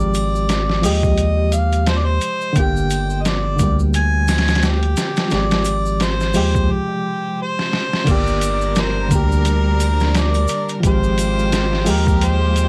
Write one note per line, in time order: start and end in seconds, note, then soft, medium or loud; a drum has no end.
0.00 0.86 G#1 loud
0.00 0.78 F3 medium
0.00 0.80 G#3 medium
0.00 0.82 G4 medium
0.00 0.86 D5 loud
0.14 closed hi-hat medium
0.14 triangle medium
0.14 shaker medium
0.35 shaker soft
0.49 snare loud
0.49 closed hi-hat medium
0.49 shaker soft
0.70 snare soft
0.82 2.19 D#2 medium
0.82 1.11 F3 medium
0.82 1.12 G#3 medium
0.82 1.13 G4 loud
0.82 1.55 D#5 loud
0.82 open hi-hat medium
0.82 shaker medium
1.03 kick medium
1.03 shaker soft
1.18 closed hi-hat medium
1.18 shaker soft
1.52 1.90 F5 loud
1.52 closed hi-hat medium
1.52 shaker medium
1.73 closed hi-hat soft
1.73 shaker soft
1.86 1.99 C5 loud
1.86 snare loud
1.86 closed hi-hat medium
1.86 shaker soft
1.97 2.06 D5 medium
2.05 2.59 C5 loud
2.21 closed hi-hat medium
2.21 shaker medium
2.41 shaker soft
2.53 3.61 G1 medium
2.53 3.54 D3 medium
2.53 3.56 A#3 medium
2.53 kick loud
2.53 closed hi-hat medium
2.53 shaker soft
2.58 3.58 G4 loud
2.58 3.23 G5 loud
2.77 shaker soft
2.90 closed hi-hat medium
2.90 triangle medium
2.90 shaker medium
3.10 shaker soft
3.22 3.29 D#5 medium
3.22 closed hi-hat medium
3.22 shaker soft
3.26 3.79 D5 medium
3.26 snare loud
3.56 4.95 D2 medium
3.56 5.27 D3 medium
3.56 5.28 A#3 medium
3.56 kick medium
3.56 closed hi-hat medium
3.56 shaker medium
3.63 5.30 G3 medium
3.79 shaker soft
3.94 4.66 G#5 loud
3.94 closed hi-hat medium
3.94 shaker medium
4.28 snare medium
4.28 closed hi-hat medium
4.28 triangle medium
4.28 shaker medium
4.38 snare medium
4.38 closed hi-hat medium
4.48 snare medium
4.48 closed hi-hat medium
4.48 shaker soft
4.55 snare medium
4.55 closed hi-hat medium
4.62 5.35 G4 loud
4.62 snare loud
4.62 closed hi-hat medium
4.62 shaker soft
4.83 closed hi-hat soft
4.97 snare loud
4.97 closed hi-hat medium
4.97 shaker medium
5.16 snare medium
5.16 closed hi-hat medium
5.16 shaker soft
5.28 6.30 F3 medium
5.28 6.31 G#3 medium
5.28 closed hi-hat medium
5.28 shaker soft
5.32 6.37 G#1 medium
5.32 6.33 G4 medium
5.32 6.04 D5 loud
5.32 snare loud
5.51 snare loud
5.51 closed hi-hat medium
5.51 shaker soft
5.65 closed hi-hat medium
5.65 triangle medium
5.65 shaker loud
5.86 shaker soft
6.00 6.73 C5 loud
6.00 snare loud
6.00 closed hi-hat medium
6.00 shaker soft
6.20 snare soft
6.20 shaker soft
6.34 6.70 D#2 medium
6.34 6.63 F3 medium
6.34 6.64 G#3 medium
6.34 6.64 G4 loud
6.34 open hi-hat medium
6.34 shaker medium
6.55 kick medium
6.55 shaker soft
6.71 7.39 G4 medium
7.42 8.11 C5 medium
7.59 snare soft
7.73 snare medium
7.93 snare medium
8.04 9.13 G1 medium
8.04 9.06 D3 medium
8.04 10.81 G3 medium
8.04 9.08 A#3 medium
8.04 10.81 D4 medium
8.04 10.81 A#4 medium
8.04 kick loud
8.04 closed hi-hat medium
8.04 crash medium
8.04 shaker soft
8.09 9.09 G4 medium
8.09 8.81 D5 medium
8.27 shaker soft
8.41 closed hi-hat medium
8.41 triangle medium
8.41 shaker loud
8.61 shaker soft
8.76 9.15 C5 medium
8.76 snare loud
8.76 closed hi-hat medium
8.76 shaker medium
9.08 10.46 D2 medium
9.08 10.79 D3 medium
9.08 10.80 A#3 medium
9.08 kick medium
9.08 closed hi-hat medium
9.08 shaker loud
9.13 10.82 G4 medium
9.13 10.18 A#4 medium
9.32 shaker soft
9.45 closed hi-hat medium
9.45 shaker soft
9.80 closed hi-hat medium
9.80 triangle medium
9.80 shaker medium
10.00 snare soft
10.00 shaker soft
10.14 10.69 D5 medium
10.14 snare loud
10.14 closed hi-hat medium
10.14 shaker soft
10.34 closed hi-hat soft
10.34 triangle medium
10.48 closed hi-hat medium
10.48 shaker medium
10.69 closed hi-hat soft
10.69 shaker soft
10.80 11.89 G#1 medium
10.80 11.82 F3 medium
10.80 11.83 G#3 medium
10.80 kick loud
10.80 closed hi-hat medium
10.84 12.69 G#3 medium
10.84 12.69 F4 medium
10.84 12.69 G4 medium
10.84 11.85 G4 medium
10.84 11.92 C5 loud
10.84 shaker medium
11.03 shaker soft
11.18 closed hi-hat medium
11.18 triangle medium
11.18 shaker medium
11.39 shaker soft
11.52 snare loud
11.52 closed hi-hat medium
11.52 shaker medium
11.73 snare soft
11.85 12.69 D#2 medium
11.85 12.14 F3 loud
11.85 12.15 G#3 medium
11.85 12.16 G4 loud
11.85 open hi-hat medium
11.85 shaker medium
11.90 12.26 A#4 medium
12.07 kick medium
12.07 shaker soft
12.21 12.69 C5 loud
12.21 closed hi-hat medium
12.21 shaker soft
12.56 closed hi-hat medium
12.56 shaker medium